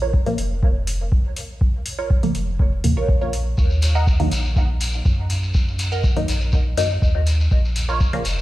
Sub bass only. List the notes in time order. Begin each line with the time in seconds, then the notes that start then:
Already playing: A#1
0.38 F1
2.35 F1
2.84 D#2
2.97 A#1
3.58 D#2
4.32 A#1
5.05 F#2
6.28 A#1
6.77 F#2
7.02 D#2
7.51 A#1
8.25 F1